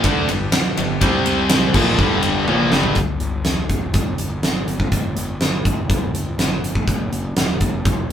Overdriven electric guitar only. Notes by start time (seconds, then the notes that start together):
0.05 D3 A3 D4
0.29 G2 D3
0.53 muted overdriven electric guitar stroke
0.78 G2 D3
1.02 C3 G3 C4
1.75 A#2 F3 A#3
1.99 G2 D3 G3
2.47 A#2 F3 A#3
2.71 G2 D3 G3